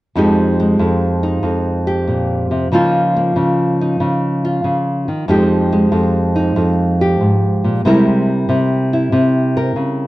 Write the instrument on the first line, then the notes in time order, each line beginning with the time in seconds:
nylon-string guitar
0.15 F2 F3 G#3 D#4 G4
0.60 G#3
0.79 F2
1.23 D#4
1.43 F2
1.87 G4
2.08 A#2
2.51 C3
2.72 C#3 F3 A#3 D#4 F4
3.17 A#3
3.36 C#3
3.81 D#4
4.00 C#3
4.45 F4
4.64 C#3
5.08 D#3
5.28 F2 F3 G#3 D#4 G4
5.73 G#3
5.92 F2
6.36 D#4
6.56 F2
7.01 G4
7.21 G#2
7.64 A#2
7.85 C3 G3 G#3 E4 A#4
8.49 C3
8.93 E4
9.12 C3
9.57 A#4
9.76 C#3